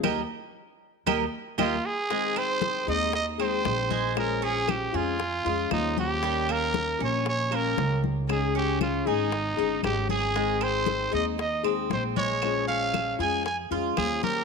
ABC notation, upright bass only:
X:1
M:4/4
L:1/8
Q:1/4=116
K:Ab
V:1 name="Upright bass" clef=bass
E,, z3 E,, z E,, z | z3 E,,3 B,,,2- | B,,,3 F,,2 F,, E,,2- | E,,3 B,,,3 D,,2- |
D,,3 A,,,2 G,,, A,,,2- | A,,,3 E,,3 B,,,2- | B,,,3 F,,2 F,, E,,2 |]